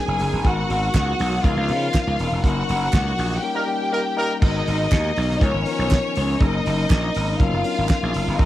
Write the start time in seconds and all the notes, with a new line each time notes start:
Already playing: F#3 B3 C#4 D#4 G#4 A#4 G#5
0.08 F#1
0.19 F#1, open hi-hat
0.33 G1
0.44 G#1 G#3 B3 D#4 F#4 A#4 F#5, kick, closed hi-hat
0.70 G#1, open hi-hat
0.94 C#2, kick, snare, clap, closed hi-hat
1.19 B1, open hi-hat
1.43 C#2 F3 B3 C#4 D#4 F4 A#4 F5, kick, closed hi-hat
1.57 C#2
1.68 C#3 F3 B3 C#4 D#4 A#4, open hi-hat
1.94 kick, snare, clap, closed hi-hat
2.07 C#2
2.19 E1, open hi-hat
2.32 F1
2.43 F#1 F#3 A#3 C#4 D#4 F#4 A#4 F#5, kick, closed hi-hat
2.69 F#1, open hi-hat
2.93 C#2, kick, snare, clap, closed hi-hat
3.18 A#1, open hi-hat
3.32 snare
3.42 G3 A#3 C#4 D#4 G4 A#4 G5
3.55 G3 A#3 D#4 A#4
3.66 G3 A#3 C#4 D#4 A#4
3.92 G3 A#3 D#4 A#4
4.17 G3 A#3 D#4 A#4
4.41 G#1 G#3 B3 D#4 F#4 A#4 D#5, kick, crash
4.67 G#1, open hi-hat
4.92 D#2, kick, snare, clap, closed hi-hat
5.16 B1, open hi-hat
5.30 snare
5.40 C#2 F3 B3 C#4 D#4 A#4 C#5, kick, closed hi-hat
5.54 G#1
5.65 D#3 B3 C#4 D#4 A#4, open hi-hat
5.71 F3
5.79 B1
5.91 kick, snare, clap, closed hi-hat
6.16 C#2, open hi-hat
6.39 F#1 F#3 A#3 C#4 D#4 G#4 D#5, kick, closed hi-hat
6.47 A#4
6.66 F#1, open hi-hat
6.90 A#1, kick, snare, clap, closed hi-hat
7.15 G#1, open hi-hat
7.39 F#1 F#3 B3 C#4 D#4 F4 A#4 F5, kick, closed hi-hat
7.54 F#1
7.63 F#3 B3 C#4 D4 A#4, open hi-hat
7.71 D#4
7.78 G#1
7.89 kick, snare, clap, closed hi-hat
8.03 A#1
8.14 F#1, open hi-hat
8.28 G1
8.38 G#1 G#3 B3 D#4 F#4 A#4 D#5, kick, closed hi-hat